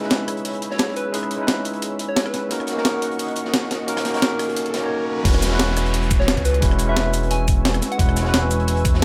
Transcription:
Already playing: analog synth bass C#2, tine electric piano D#4 E4 B4, analog synth pad G#4 C#5 B5 E6, riser
0.00 tine electric piano G#3 C#4 D#4, snare
0.04 tine electric piano E4 B4
0.10 snare, closed hi-hat
0.28 cross-stick, closed hi-hat
0.37 closed hi-hat
0.45 closed hi-hat, open hi-hat
0.54 closed hi-hat
0.62 closed hi-hat
0.71 soft synth lead C#5, snare
0.78 snare, closed hi-hat
0.88 analog synth bass B1, snare
0.96 soft synth lead B4, closed hi-hat
1.12 analog synth bass C#2, tine electric piano G#3 C#4 D#4 E4 B4, soft synth lead G#4, closed hi-hat
1.23 cross-stick
1.31 closed hi-hat
1.36 tine electric piano G#3 C#4 D#4
1.41 tine electric piano E4 B4
1.47 analog synth bass C#2, snare, closed hi-hat
1.65 closed hi-hat
1.73 closed hi-hat
1.82 closed hi-hat
1.99 closed hi-hat
2.09 soft synth lead C#5
2.16 snare, closed hi-hat
2.26 soft synth lead B4, cross-stick
2.34 snare, closed hi-hat
2.49 analog synth bass D#1, tine electric piano A#3 C#4 D#4 F#4 A#4, analog synth pad A#4 D#5 F#5 C#6, closed hi-hat
2.60 cross-stick
2.67 snare, closed hi-hat
2.73 tine electric piano A#3 C#4 D#4
2.77 tine electric piano F#4 A#4, snare
2.85 analog synth bass D#1, snare, closed hi-hat
3.02 closed hi-hat
3.11 closed hi-hat
3.19 closed hi-hat, open hi-hat
3.28 closed hi-hat
3.36 closed hi-hat
3.45 snare
3.54 snare, closed hi-hat
3.63 snare
3.71 analog synth bass A#1, snare, closed hi-hat
3.86 analog synth bass D#1, tine electric piano A#3 C#4 D#4 F#4 A#4, closed hi-hat
3.97 cross-stick, snare, closed hi-hat
4.05 snare, closed hi-hat
4.11 tine electric piano A#3 C#4 D#4, closed hi-hat
4.15 tine electric piano F#4 A#4, snare
4.22 analog synth bass D#1, snare, closed hi-hat
4.39 cross-stick, closed hi-hat
4.49 closed hi-hat
4.56 closed hi-hat
4.66 closed hi-hat
4.74 analog synth bass A#1, snare, closed hi-hat
4.79 tine electric piano A#3 C#4 D#4
4.84 tine electric piano F#4 C#5
5.23 analog synth bass E1, tine electric piano G#3 C#4 E4 F#4 B4, analog synth pad B4 G#5 C#6 E6, kick, closed hi-hat, downlifter
5.34 cross-stick
5.42 snare, closed hi-hat, shaker
5.48 tine electric piano G#3 C#4 E4, snare
5.53 tine electric piano F#4 B4
5.59 snare, closed hi-hat
5.76 cross-stick, closed hi-hat, shaker
5.86 closed hi-hat
5.94 closed hi-hat, open hi-hat
6.02 closed hi-hat
6.11 kick, closed hi-hat, shaker
6.20 soft synth lead C#5, snare
6.28 snare, closed hi-hat
6.37 analog synth bass C#2, kick, snare, closed hi-hat
6.45 soft synth lead B4, closed hi-hat, shaker
6.54 closed hi-hat
6.60 analog synth bass E1, tine electric piano G#3 C#4 E4 F#4 B4, kick, closed hi-hat
6.71 cross-stick
6.79 closed hi-hat, shaker
6.85 tine electric piano G#3 C#4 E4, soft synth lead E5
6.90 tine electric piano F#4 B4
6.97 analog synth bass E1, snare, closed hi-hat
7.14 closed hi-hat, shaker
7.23 closed hi-hat
7.31 soft synth lead G#5, closed hi-hat
7.48 kick, closed hi-hat, shaker
7.65 snare, closed hi-hat
7.74 cross-stick, closed hi-hat
7.82 snare, closed hi-hat, shaker
7.92 soft synth lead F#5, closed hi-hat
7.97 analog synth bass E1, tine electric piano G#3 C#4 E4 F#4 B4, kick, closed hi-hat
8.09 cross-stick
8.16 snare, closed hi-hat, shaker
8.22 tine electric piano G#3 C#4 E4, snare
8.27 tine electric piano F#4 B4
8.34 analog synth bass E1, snare, closed hi-hat
8.51 closed hi-hat, shaker
8.60 closed hi-hat
8.67 closed hi-hat, open hi-hat
8.77 closed hi-hat
8.85 kick, closed hi-hat, shaker
8.94 snare

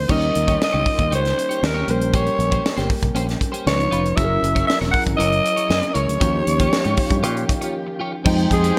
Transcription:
Already playing: tine electric piano F3 C4 D#4 A#4, alto saxophone C5
0.08 fingered electric bass D#2, string section D#3 A#3 C#4 F4 G4, tine electric piano G3 C#4 D#4 A#4, clean electric guitar D#4 G4 C#5, alto saxophone D#5, kick, crash
0.22 closed hi-hat
0.34 fingered electric bass D#2, muted clean electric guitar stroke, closed hi-hat
0.47 clean electric guitar D#4 G4 C#5, kick, closed hi-hat
0.60 alto saxophone D#5, muted clean electric guitar stroke, snare
0.72 fingered electric bass C#2, clean electric guitar D#4 G4 C#5
0.86 muted clean electric guitar stroke, kick, open hi-hat
0.98 fingered electric bass D#2, muted clean electric guitar stroke, kick, closed hi-hat
1.11 fingered electric bass C#2, clean electric guitar D#4 G4 C#5, alto saxophone C5, closed hi-hat
1.24 muted clean electric guitar stroke, snare, closed hi-hat
1.36 muted clean electric guitar stroke, closed hi-hat
1.49 clean electric guitar D#4 G4 C#5, closed hi-hat
1.62 fingered electric bass D#2, alto saxophone A#4, muted clean electric guitar stroke, snare
1.74 clean electric guitar D#4 G4 C#5
1.87 fingered electric bass A#1, tine electric piano G3 A#3 C#4 A#4, clean electric guitar C#4 G4 C5, alto saxophone C5, closed hi-hat
2.01 muted clean electric guitar stroke, closed hi-hat
2.13 clean electric guitar C#4 G4 C5, alto saxophone C#5, kick, closed hi-hat
2.26 closed hi-hat
2.39 fingered electric bass A#1, muted clean electric guitar stroke, closed hi-hat
2.51 clean electric guitar C#4 G4 C5, kick, closed hi-hat
2.64 muted clean electric guitar stroke, snare
2.77 fingered electric bass G1, clean electric guitar C#4 G4 C5, snare, closed hi-hat
2.90 muted clean electric guitar stroke, kick, open hi-hat
3.03 fingered electric bass C2, muted clean electric guitar stroke, kick, closed hi-hat
3.14 fingered electric bass A#1, clean electric guitar C#4 G4 C5, closed hi-hat
3.27 muted clean electric guitar stroke, snare, closed hi-hat
3.40 muted clean electric guitar stroke, kick, closed hi-hat
3.52 clean electric guitar C#4 G4 C5, closed hi-hat
3.66 fingered electric bass C#2, string section C#3 G#3 B3 D#4 F4, tine electric piano E3 C#4 D#4 B4, alto saxophone C#5, snare
3.73 tine electric piano F3
3.78 muted clean electric guitar stroke, closed hi-hat
3.91 fingered electric bass F1, clean electric guitar D#4 F4 B4, closed hi-hat
4.05 closed hi-hat
4.16 fingered electric bass F#1, tine electric piano F#3 C#4 E4 G#4, string section F#3 C#4 E4 G#4 A#4, clean electric guitar E4 A#4 C#5, alto saxophone E5, kick, closed hi-hat
4.24 tine electric piano A#4
4.42 fingered electric bass F#1, muted clean electric guitar stroke, closed hi-hat
4.55 clean electric guitar E4 A#4 C#5, kick, closed hi-hat
4.67 alto saxophone E5, muted clean electric guitar stroke, snare
4.81 fingered electric bass E1, clean electric guitar E4 A#4 C#5, snare, closed hi-hat
4.91 alto saxophone F#5, muted clean electric guitar stroke, kick, open hi-hat
5.06 fingered electric bass G#1, muted clean electric guitar stroke, kick, closed hi-hat
5.17 fingered electric bass F#1, clean electric guitar E4 A#4 C#5, alto saxophone D#5, closed hi-hat
5.32 muted clean electric guitar stroke, closed hi-hat
5.44 muted clean electric guitar stroke, closed hi-hat
5.56 clean electric guitar E4 A#4 C#5, closed hi-hat
5.70 fingered electric bass F#2, snare
5.82 muted clean electric guitar stroke, closed hi-hat
5.94 fingered electric bass C#2, clean electric guitar E4 A#4 C#5, alto saxophone C#5, closed hi-hat
6.07 fingered electric bass D2, muted clean electric guitar stroke, closed hi-hat
6.20 fingered electric bass D#2, string section D#3 A#3 F4 G4, tine electric piano F3 C#4 D#4 F#4, clean electric guitar F4 G4 C#5, kick, closed hi-hat
6.29 tine electric piano G4
6.46 fingered electric bass D#2, muted clean electric guitar stroke, closed hi-hat
6.59 clean electric guitar F4 G4 C#5, kick, closed hi-hat
6.72 muted clean electric guitar stroke, snare
6.84 fingered electric bass G#2, clean electric guitar F4 G4 C#5, closed hi-hat
6.97 muted clean electric guitar stroke, kick, open hi-hat
7.10 fingered electric bass G2, muted clean electric guitar stroke, kick, closed hi-hat
7.23 fingered electric bass A#2, clean electric guitar F4 G4 C#5, closed hi-hat
7.37 closed hi-hat
7.49 muted clean electric guitar stroke, kick, closed hi-hat
7.61 clean electric guitar F4 G4 C#5, closed hi-hat
7.87 muted clean electric guitar stroke
8.00 clean electric guitar F4 G4 C#5
8.12 muted clean electric guitar stroke
8.25 fingered electric bass F2, tine electric piano F3 G#3 D#4 G5, string section F3 C4 D#4 G#4 G5, clean electric guitar G#3 D#4 G4, horn section G#3 C5 G5, kick, crash
8.38 closed hi-hat
8.50 fingered electric bass F2, alto saxophone G#4, muted clean electric guitar stroke, kick, closed hi-hat
8.62 clean electric guitar G#3 D#4 G4, closed hi-hat

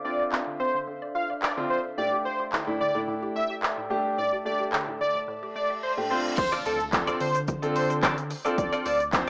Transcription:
Already playing: glass harmonica D4 A4 C5 E5 F5
0.05 grand piano C4 D4 F4, analog synth lead D5
0.20 synth arpeggio sound D5
0.32 synth arpeggio sound C4, clap
0.47 synth arpeggio sound D3
0.60 synth arpeggio sound C4, analog synth lead C5
0.75 synth arpeggio sound D3
0.87 synth arpeggio sound D3
1.02 synth arpeggio sound D5
1.15 synth arpeggio sound F4, analog synth lead F5
1.30 synth arpeggio sound D5
1.42 analog synth lead D5, clap
1.57 synth arpeggio sound D3, grand piano C4 D4 F4
1.70 analog synth lead C5, synth arpeggio sound D5
1.98 synth arpeggio sound A2, grand piano A3 D4 G4, glass harmonica A3 D5 G5, analog synth lead D5
2.12 synth arpeggio sound G4
2.25 analog synth lead C5
2.40 synth arpeggio sound G4
2.52 synth arpeggio sound D3, grand piano D4 E4, clap
2.67 synth arpeggio sound A2, grand piano A3 D4 E4
2.80 synth arpeggio sound D3, analog synth lead D5
2.94 synth arpeggio sound A2, grand piano A3 D4 E4
3.08 synth arpeggio sound A2
3.22 synth arpeggio sound G4
3.35 synth arpeggio sound A3, analog synth lead E5
3.50 synth arpeggio sound G4
3.63 clap
3.78 synth arpeggio sound A2
3.90 grand piano A3 D4 G4, synth arpeggio sound G4
4.18 synth arpeggio sound A2, analog synth lead D5, glass harmonica A5
4.33 synth arpeggio sound G4
4.45 grand piano A3 D4 G4, analog synth lead D5
4.60 synth arpeggio sound G4
4.73 synth arpeggio sound D3, clap
4.88 synth arpeggio sound A2
5.01 synth arpeggio sound D3, analog synth lead D5
5.15 synth arpeggio sound A2
5.28 synth arpeggio sound A2, reverse cymbal
5.43 synth arpeggio sound G4
5.56 synth arpeggio sound A3, analog synth lead D5
5.70 synth arpeggio sound G4
5.83 analog synth lead C5
5.97 synth arpeggio sound A2, grand piano A3 D4 G4
6.10 grand piano C4 D4 F4, glass harmonica D4 C5 F5, analog synth lead C5, synth arpeggio sound D5
6.38 sub bass D2, analog synth lead C5, muted clean electric guitar stroke, kick, closed hi-hat, crash, impact, shaker
6.52 clean electric guitar C4 F4 A4 D5, closed hi-hat, shaker
6.65 sub bass D2, clean electric guitar C4 F4 A4 D5, analog synth lead A4, open hi-hat, shaker
6.80 muted clean electric guitar stroke, closed hi-hat, shaker
6.93 grand piano C4 D4 F4 A4, muted clean electric guitar stroke, kick, clap, closed hi-hat, shaker
7.07 clean electric guitar C4 F4 A4 D5, closed hi-hat, shaker
7.20 sub bass D3, analog synth lead C5, muted clean electric guitar stroke, open hi-hat, shaker
7.35 muted clean electric guitar stroke, closed hi-hat, shaker
7.48 muted clean electric guitar stroke, kick, closed hi-hat, shaker
7.62 grand piano C4 D4 F4 A4, muted clean electric guitar stroke, closed hi-hat, shaker
7.76 analog synth lead C5, open hi-hat, shaker
7.90 muted clean electric guitar stroke, closed hi-hat, shaker
8.03 clean electric guitar C4 F4 A4 D5, kick, clap, closed hi-hat, shaker
8.17 muted clean electric guitar stroke, closed hi-hat, shaker
8.30 muted clean electric guitar stroke, open hi-hat, shaker
8.45 grand piano C4 D4 F4 A4, clean electric guitar C4 F4 A4 D5, closed hi-hat, shaker
8.58 sub bass D2, analog synth lead D5, kick, closed hi-hat, shaker
8.73 clean electric guitar C4 F4 A4 D5, closed hi-hat, shaker
8.85 sub bass D2, clean electric guitar C4 F4 A4 D5, analog synth lead D5, open hi-hat, shaker
9.00 muted clean electric guitar stroke, closed hi-hat, shaker
9.13 grand piano C4 D4 F4 C5, muted clean electric guitar stroke, kick, clap, closed hi-hat, shaker

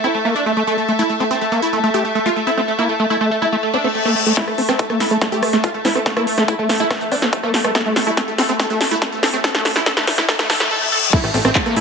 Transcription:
Already playing: synth texture A3, string section A4 E5 A5
0.04 acid bass C4, supersaw synth E4
0.14 supersaw synth A3
0.25 supersaw synth A3, acid bass A#3
0.36 supersaw synth D4
0.46 acid bass A3, supersaw synth A3
0.57 acid bass A3, supersaw synth A3
0.67 acid bass A3, supersaw synth A3
0.78 supersaw synth A3
0.88 acid bass A3, supersaw synth A3
0.99 acid bass A3, supersaw synth E4
1.10 supersaw synth A3
1.20 supersaw synth A3, acid bass C4
1.31 acid bass C4, supersaw synth C4
1.41 supersaw synth A3
1.52 supersaw synth A3, acid bass A#3
1.62 supersaw synth E4
1.73 supersaw synth A3, acid bass A3
1.83 supersaw synth A3, acid bass A3
1.94 acid bass A3, supersaw synth G4
2.05 supersaw synth A3
2.15 supersaw synth A3, acid bass A3
2.26 acid bass A3, supersaw synth F4
2.36 supersaw synth A3
2.47 acid bass C4, supersaw synth E4
2.57 supersaw synth A3, acid bass C4
2.68 supersaw synth A3
2.79 acid bass A#3, supersaw synth E4
2.89 supersaw synth A3
3.00 acid bass A3, supersaw synth A3
3.10 acid bass A3, supersaw synth E4
3.21 supersaw synth A3, acid bass A3
3.31 supersaw synth A3
3.42 acid bass A3, supersaw synth E4
3.52 supersaw synth A3, acid bass A3, reverse cymbal
3.63 supersaw synth A3
3.74 acid bass C4, supersaw synth D4
3.84 supersaw synth A3, acid bass C4
3.95 supersaw synth A3
4.05 supersaw synth A3, acid bass A#3
4.16 supersaw synth A3
4.26 supersaw synth A3, acid bass A3
4.37 acid bass A3, synth texture A3, supersaw synth E4, kick, snare, closed hi-hat, riser
4.48 supersaw synth A3, cross-stick
4.58 supersaw synth A3, acid bass C4, open hi-hat
4.69 supersaw synth C4, acid bass C4, cross-stick, snare, closed hi-hat
4.79 supersaw synth A3, kick, closed hi-hat
4.90 supersaw synth A3, acid bass A#3, cross-stick
5.00 supersaw synth E4, snare, open hi-hat
5.11 acid bass A3, supersaw synth A3, closed hi-hat
5.21 supersaw synth A3, acid bass A3, kick, cross-stick, snare, closed hi-hat
5.32 acid bass A3, supersaw synth G4, closed hi-hat
5.43 supersaw synth A3, cross-stick, open hi-hat
5.53 supersaw synth A3, acid bass A3, snare, closed hi-hat
5.64 acid bass A3, supersaw synth F4, kick, cross-stick, closed hi-hat
5.74 supersaw synth A3
5.85 acid bass C4, supersaw synth E4, snare, open hi-hat
5.95 supersaw synth A3, acid bass C4, cross-stick, closed hi-hat
6.06 supersaw synth A3, kick, snare, closed hi-hat
6.17 acid bass A#3, supersaw synth E4, cross-stick
6.27 supersaw synth A3, open hi-hat
6.38 supersaw synth A3, acid bass A3, cross-stick, snare, closed hi-hat
6.48 acid bass A3, supersaw synth E4, kick, closed hi-hat
6.59 acid bass A3, supersaw synth A3
6.69 supersaw synth A3, cross-stick, snare, open hi-hat
6.80 acid bass A3, supersaw synth E4, closed hi-hat
6.91 acid bass A3, supersaw synth A3, kick, cross-stick, snare, closed hi-hat
7.01 supersaw synth A3, closed hi-hat
7.12 acid bass C4, supersaw synth D4, cross-stick, open hi-hat
7.22 supersaw synth A3, acid bass C4, snare, closed hi-hat
7.33 supersaw synth A3, kick, closed hi-hat
7.43 supersaw synth A3, acid bass A#3, cross-stick
7.54 supersaw synth A3, snare, open hi-hat
7.64 acid bass A3, supersaw synth A3, cross-stick, closed hi-hat
7.75 acid bass A3, supersaw synth A4, kick, snare, closed hi-hat
7.86 acid bass A3, supersaw synth A3
7.96 supersaw synth A3, snare, open hi-hat
8.07 acid bass A3, supersaw synth E4, closed hi-hat
8.17 supersaw synth A3, acid bass A3, kick, snare, closed hi-hat
8.28 supersaw synth A3
8.38 acid bass C4, supersaw synth A4, snare, open hi-hat
8.49 supersaw synth A3, acid bass C4, closed hi-hat
8.60 acid bass A3, supersaw synth A4, kick, snare, closed hi-hat
8.70 supersaw synth A3, acid bass A3, closed hi-hat
8.81 supersaw synth A3, snare, open hi-hat
8.91 acid bass A3, supersaw synth E4, closed hi-hat
9.02 supersaw synth A3, acid bass A3, kick, snare, closed hi-hat
9.12 supersaw synth A3
9.23 acid bass C4, supersaw synth A4, snare, open hi-hat
9.33 supersaw synth A3, acid bass C4, closed hi-hat
9.44 acid bass A3, supersaw synth A4, kick, snare, closed hi-hat
9.55 supersaw synth A3, acid bass A3, snare
9.65 supersaw synth A3, snare, open hi-hat
9.76 acid bass A3, supersaw synth E4, snare
9.86 acid bass A3, supersaw synth A4, kick, snare, closed hi-hat
9.97 supersaw synth A3, acid bass A3, snare
10.07 supersaw synth A3, snare, open hi-hat
10.18 acid bass A3, supersaw synth E4, snare
10.29 acid bass A3, supersaw synth A4, kick, snare, closed hi-hat, reverse cymbal
10.39 acid bass A3, supersaw synth A3, snare, closed hi-hat
10.50 acid bass A3, supersaw synth A4, snare, open hi-hat
10.60 acid bass A3, supersaw synth A3, snare, closed hi-hat
10.71 supersaw synth A4
10.81 supersaw synth A3
10.92 supersaw synth A4
11.03 supersaw synth A3
11.13 synth texture A3, acid bass A3, supersaw synth E4, string section A4, kick, closed hi-hat, crash, downlifter
11.24 analog synth bass A1, supersaw synth A3, cross-stick, closed hi-hat
11.34 analog synth bass A1, supersaw synth A3, acid bass C4, string section E5, open hi-hat
11.45 analog synth bass A1, acid bass C4, supersaw synth C4, cross-stick, closed hi-hat
11.54 supersaw synth A3, string section A5, kick, clap, closed hi-hat
11.66 supersaw synth A3, acid bass A#3, cross-stick, closed hi-hat
11.76 analog synth bass A2, supersaw synth E4, open hi-hat

